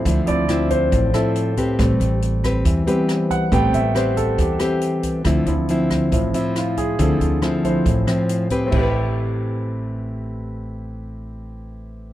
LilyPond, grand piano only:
\new Staff \with { instrumentName = "Grand piano" } { \time 4/4 \key a \minor \tempo 4 = 138 << { r8 d''4 c''4 a'4 r8 | r2. r8 fis''8 | g''8 e''8 c''8 a'8 g'2 | r2 r8 e'8 f'8 gis'8 |
a'4. c''4. r4 | <c' e' g' b'>1~ | <c' e' g' b'>1 | } \\ { r8 <f c' e'>4. r2 | <g c'>2~ <g c'>8 <g b c'>8 r4 | <g b c'>4. r2 r8 | r8 <f c' e'>8 r4 <f c' e'>8 r4. |
r4. <f c' e'>8 r2 | r1 | r1 | } >> }